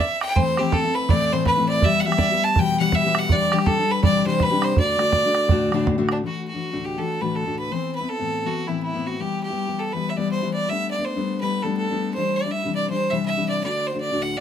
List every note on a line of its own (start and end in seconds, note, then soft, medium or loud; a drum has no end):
0.00 0.21 E5 loud
0.21 0.37 G5 loud
0.21 bodhran medium
0.36 0.57 E3 medium
0.36 0.59 A3 medium
0.36 0.58 C4 medium
0.36 0.60 E4 medium
0.36 0.60 C5 loud
0.36 bodhran medium
0.57 0.84 E3 medium
0.57 0.84 A3 medium
0.57 0.85 C4 medium
0.57 0.83 E4 medium
0.57 0.75 G4 medium
0.57 bodhran medium
0.72 0.96 A4 loud
0.72 bodhran medium
0.84 1.11 A3 soft
0.84 1.10 C4 soft
0.84 1.10 E4 soft
0.95 1.12 B4 loud
1.09 1.31 A2 medium
1.09 1.31 E3 medium
1.09 1.32 A3 medium
1.09 1.32 C4 medium
1.09 1.32 E4 medium
1.09 1.34 D5 loud
1.09 bodhran medium
1.32 1.58 A2 medium
1.32 1.58 E3 medium
1.32 1.57 A3 medium
1.32 1.57 C4 medium
1.32 1.56 E4 medium
1.32 1.46 C5 loud
1.46 1.67 B4 loud
1.46 bodhran medium
1.57 1.84 A2 medium
1.57 1.81 E3 medium
1.57 1.84 A3 medium
1.57 1.83 C4 medium
1.57 1.83 E4 medium
1.69 1.86 D5 loud
1.82 2.04 E3 medium
1.82 2.05 G3 medium
1.82 2.06 B3 medium
1.82 2.06 G4 medium
1.82 2.01 E5 loud
1.82 bodhran medium
2.00 2.07 F#5 medium
2.05 2.31 E3 medium
2.05 2.31 G3 medium
2.05 2.31 B3 medium
2.05 2.30 G4 medium
2.05 2.19 E5 loud
2.12 bodhran medium
2.17 2.22 D5 medium
2.17 2.46 E5 loud
2.17 bodhran medium
2.31 2.56 G3 soft
2.31 2.57 B3 soft
2.31 2.57 G4 medium
2.44 2.61 A5 loud
2.56 2.78 B2 medium
2.56 2.79 E3 medium
2.56 2.79 G3 medium
2.56 2.80 B3 medium
2.56 2.80 G4 medium
2.56 2.79 G5 loud
2.56 bodhran medium
2.80 3.05 B2 medium
2.80 3.05 E3 medium
2.80 3.05 G3 medium
2.80 3.04 B3 medium
2.80 3.04 G4 medium
2.80 2.97 F#5 loud
2.92 3.20 E5 loud
2.92 bodhran medium
3.05 3.31 B2 medium
3.05 3.29 E3 medium
3.05 3.30 G3 medium
3.05 3.31 B3 medium
3.05 3.30 G4 medium
3.15 3.34 F#5 loud
3.15 bodhran medium
3.29 3.51 E3 medium
3.29 3.52 G3 medium
3.29 3.53 D4 medium
3.29 3.54 G4 medium
3.29 3.54 D5 loud
3.29 bodhran medium
3.52 3.78 E3 medium
3.52 3.79 G3 medium
3.52 3.78 D4 medium
3.52 3.69 G4 medium
3.52 3.77 G4 medium
3.52 bodhran medium
3.59 bodhran medium
3.66 3.92 A4 loud
3.66 bodhran medium
3.78 4.02 G3 soft
3.78 4.02 D4 soft
3.78 4.02 G4 medium
3.91 4.03 B4 medium
4.02 4.24 C3 medium
4.02 4.24 E3 medium
4.02 4.25 G3 medium
4.02 4.24 D4 medium
4.02 4.25 G4 medium
4.02 4.24 D5 loud
4.02 bodhran medium
4.25 4.51 C3 medium
4.25 4.51 E3 medium
4.25 4.50 G3 loud
4.25 4.50 D4 loud
4.25 4.50 G4 medium
4.25 4.44 C5 loud
4.40 4.66 B4 loud
4.40 bodhran medium
4.51 4.77 C3 medium
4.51 4.75 E3 medium
4.51 4.75 G3 medium
4.51 4.76 D4 medium
4.51 4.77 G4 medium
4.62 4.78 C5 loud
4.62 bodhran medium
4.75 4.96 D3 medium
4.75 4.97 A3 medium
4.75 4.97 D4 medium
4.75 4.98 F#4 medium
4.75 bodhran medium
4.79 5.85 D5 loud
4.97 5.24 D3 medium
4.97 5.24 A3 medium
4.97 5.24 D4 medium
4.97 5.23 F#4 medium
4.97 bodhran medium
5.12 bodhran medium
5.24 5.49 D3 soft
5.24 5.50 A3 medium
5.24 5.50 D4 medium
5.24 5.50 F#4 medium
5.35 bodhran medium
5.49 5.71 D2 medium
5.49 5.72 A2 medium
5.49 5.72 D3 medium
5.49 5.72 A3 medium
5.49 5.73 D4 medium
5.49 5.73 F#4 loud
5.49 bodhran medium
5.72 5.98 D2 medium
5.72 5.98 A2 medium
5.72 5.97 D3 medium
5.72 5.97 A3 medium
5.72 5.97 D4 loud
5.72 5.97 F#4 loud
5.72 bodhran medium
5.87 bodhran medium
5.98 6.24 D2 medium
5.98 6.24 A2 medium
5.98 6.22 D3 medium
5.98 6.22 A3 medium
5.98 6.23 D4 medium
5.98 6.24 F#4 medium
6.09 6.18 D4 medium
6.09 bodhran medium
6.23 6.53 E3 medium
6.23 6.53 A3 soft
6.23 6.53 D4 medium
6.23 6.52 F#4 soft
6.23 6.46 F#4 medium
6.48 6.86 F#4 medium
6.53 6.72 E3 soft
6.53 6.72 A3 soft
6.53 6.72 D4 soft
6.53 6.71 F#4 soft
6.72 6.99 D2 soft
6.72 6.99 A2 soft
6.72 6.97 E3 soft
6.72 6.97 A3 soft
6.72 6.98 D4 medium
6.72 6.98 F#4 medium
6.85 7.00 G4 medium
6.98 7.20 E3 soft
6.98 7.20 A3 soft
6.98 7.21 D4 medium
6.98 7.21 F#4 medium
6.98 7.23 A4 medium
7.20 7.46 D2 medium
7.20 7.46 A2 medium
7.20 7.45 E3 medium
7.20 7.45 A3 medium
7.20 7.45 D4 medium
7.20 7.44 F#4 medium
7.20 7.37 B4 medium
7.36 7.58 A4 medium
7.46 7.72 D2 soft
7.46 7.72 A2 soft
7.46 7.70 E3 soft
7.46 7.72 A3 medium
7.46 7.72 D4 medium
7.46 7.72 F#4 medium
7.59 7.73 B4 medium
7.71 8.01 E3 medium
7.71 8.01 B3 soft
7.71 8.00 C4 medium
7.71 7.99 E4 medium
7.71 7.94 C5 medium
7.95 8.11 B4 medium
8.00 8.19 B3 soft
8.00 8.18 C4 soft
8.00 8.18 E4 soft
8.09 8.48 A4 medium
8.19 8.46 A2 soft
8.19 8.43 E3 soft
8.19 8.45 B3 soft
8.19 8.45 C4 soft
8.19 8.45 E4 soft
8.44 8.67 E3 soft
8.44 8.67 B3 soft
8.44 8.68 C4 soft
8.44 8.68 E4 medium
8.44 8.69 F#4 medium
8.67 8.93 A2 medium
8.67 8.94 E3 medium
8.67 8.94 B3 medium
8.67 8.93 C4 medium
8.67 8.82 E4 medium
8.67 8.93 E4 medium
8.83 9.08 E4 medium
8.94 9.21 A2 soft
8.94 9.18 E3 medium
8.94 9.19 B3 medium
8.94 9.20 C4 medium
8.94 9.20 E4 medium
9.07 9.22 F#4 medium
9.19 9.49 E3 medium
9.19 9.50 G3 soft
9.19 9.50 B3 medium
9.19 9.49 E4 medium
9.19 9.42 G4 medium
9.43 9.80 G4 medium
9.50 9.67 G3 soft
9.50 9.67 B3 soft
9.50 9.66 E4 soft
9.68 9.93 E3 soft
9.68 9.94 G3 soft
9.68 9.94 B3 soft
9.68 9.93 E4 medium
9.79 9.94 A4 medium
9.93 10.16 E3 soft
9.93 10.16 G3 soft
9.93 10.17 B3 medium
9.93 10.17 E4 medium
9.93 10.11 B4 medium
10.10 10.19 E5 medium
10.17 10.42 E3 medium
10.17 10.42 G3 medium
10.17 10.42 B3 medium
10.17 10.41 E4 medium
10.17 10.31 D5 medium
10.31 10.52 C5 medium
10.43 10.68 E3 medium
10.43 10.68 G3 soft
10.43 10.68 B3 medium
10.43 10.68 E4 medium
10.54 10.71 D5 medium
10.69 10.98 G3 soft
10.69 10.98 A3 soft
10.69 10.98 B3 medium
10.69 10.97 D4 medium
10.69 10.90 E5 loud
10.91 11.06 D5 medium
10.98 11.15 A3 soft
10.98 11.15 B3 soft
10.98 11.14 D4 soft
11.05 11.40 C5 medium
11.16 11.41 G3 soft
11.16 11.41 A3 soft
11.16 11.42 B3 medium
11.16 11.41 D4 medium
11.41 11.62 G3 medium
11.41 11.63 A3 soft
11.41 11.63 B3 soft
11.41 11.64 D4 medium
11.41 11.64 B4 medium
11.63 11.89 G3 medium
11.63 11.90 A3 medium
11.63 11.90 B3 medium
11.63 11.89 D4 medium
11.63 11.77 A4 medium
11.77 12.12 A4 medium
11.91 12.15 G3 soft
11.91 12.16 A3 soft
11.91 12.16 B3 medium
11.91 12.16 D4 medium
12.14 12.45 E3 soft
12.14 12.46 G3 soft
12.14 12.46 D4 medium
12.14 12.38 C5 medium
12.18 12.45 E4 soft
12.36 12.52 D5 medium
12.46 12.63 G3 soft
12.46 12.63 D4 soft
12.46 12.63 E4 soft
12.51 12.74 E5 medium
12.64 12.90 C3 soft
12.64 12.89 E3 soft
12.64 12.89 G3 soft
12.64 12.90 D4 medium
12.64 12.89 E4 medium
12.75 12.89 D5 medium
12.90 13.11 E3 soft
12.90 13.11 G3 soft
12.90 13.12 D4 medium
12.90 13.12 E4 soft
12.90 13.12 C5 medium
13.10 13.37 C3 medium
13.10 13.37 E3 medium
13.10 13.36 G3 medium
13.10 13.36 D4 medium
13.10 13.36 E4 medium
13.10 13.25 E5 medium
13.26 13.47 E5 medium
13.37 13.64 C3 soft
13.37 13.63 E3 medium
13.37 13.63 G3 medium
13.37 13.63 D4 medium
13.37 13.63 E4 medium
13.49 13.62 D5 medium
13.63 13.93 D3 soft
13.63 13.93 A3 medium
13.63 13.93 D4 medium
13.63 13.92 F#4 medium
13.63 13.88 D5 medium
13.87 14.00 C5 medium
13.93 14.11 D3 soft
13.93 14.11 A3 soft
13.93 14.11 D4 soft
13.93 14.10 F#4 soft
14.01 14.24 D5 medium
14.12 14.38 D2 soft
14.12 14.38 A2 soft
14.12 14.37 D3 soft
14.12 14.37 A3 soft
14.12 14.37 D4 medium
14.12 14.37 F#4 medium
14.22 14.39 F#5 medium
14.37 14.40 D5 medium